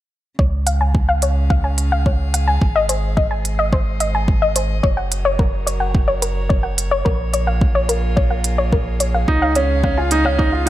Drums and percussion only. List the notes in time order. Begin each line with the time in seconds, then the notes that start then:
0.39 kick
0.67 closed hi-hat
0.95 kick
1.22 closed hi-hat
1.50 kick
1.78 closed hi-hat
2.06 kick
2.34 closed hi-hat
2.61 kick
2.89 closed hi-hat
3.17 kick
3.45 closed hi-hat
3.73 kick
4.00 closed hi-hat
4.28 kick
4.56 closed hi-hat
4.84 kick
5.12 closed hi-hat
5.39 kick
5.67 closed hi-hat
5.95 kick
6.22 closed hi-hat
6.50 kick
6.78 closed hi-hat
7.06 kick
7.34 closed hi-hat
7.61 kick
7.89 closed hi-hat
8.17 kick
8.44 closed hi-hat
8.72 kick
9.00 closed hi-hat
9.28 kick
9.55 closed hi-hat
9.84 kick
10.11 closed hi-hat
10.39 kick